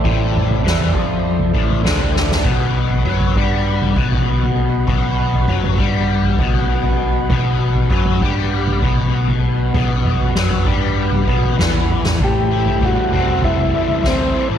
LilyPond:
<<
  \new Staff \with { instrumentName = "Harmonium" } { \time 4/4 \key b \phrygian \tempo 4 = 99 <g e' a' c''>1 | <b fis' b' fis''>1~ | <b fis' b' fis''>1~ | <b fis' b' fis''>1~ |
<b fis' b' fis''>1 | <e' a' c'' a''>1 | }
  \new Staff \with { instrumentName = "Transistor combo organ" } { \time 4/4 \key b \phrygian r1 | r1 | r1 | r1 |
r1 | g'4 fis'4 e'4 c'8. r16 | }
  \new Staff \with { instrumentName = "Overdriven electric guitar" } { \clef bass \time 4/4 \key b \phrygian a,4 e8 f4 a,8 d4 | b,4 fis8 g4 b,4. | b,4 fis8 g4 b,4. | b,4 fis8 g4 b,4. |
b,4 fis8 g4 b,8 e4 | a,8 e'8 g8 c'8 e8 g8 c'8 e8 | }
  \new Staff \with { instrumentName = "Picked electric bass" } { \clef bass \time 4/4 \key b \phrygian a,,4 e,8 f,4 a,,8 d,4 | b,,4 fis,8 g,4 b,,4. | b,,4 fis,8 g,4 b,,4. | b,,4 fis,8 g,4 b,,4. |
b,,4 fis,8 g,4 b,,8 e,4 | a,,8. g,,16 a,16 r16 c,8 c,8 r8 d,8 r16 a,,16 | }
  \new DrumStaff \with { instrumentName = "Drums" } \drummode { \time 4/4 <bd tomfh>8 toml16 tomfh16 sn16 tomfh16 bd8 r16 tomfh16 bd16 tomfh16 <sn toml>16 tomfh16 sn16 sn16 | <bd tomfh>8. tomfh16 bd16 tomfh16 bd8 r16 tomfh16 bd16 tomfh16 r16 tomfh8. | <bd tomfh>8. tomfh16 bd16 tomfh16 bd8 r16 tomfh16 bd16 tomfh16 r16 tomfh8. | <bd tomfh>8. tomfh16 bd16 tomfh16 bd8 r16 tomfh16 bd16 tomfh16 r16 tomfh8. |
<bd tomfh>8 toml16 tomfh16 sn16 tomfh16 bd8 r16 tomfh16 bd16 tomfh16 <sn toml>16 tomfh16 tommh16 sn16 | <bd tomfh>8. tomfh16 <bd toml>8 <tomfh toml>8 <bd tomfh>16 tomfh16 tomfh16 tomfh16 <bd sn tomfh>4 | }
>>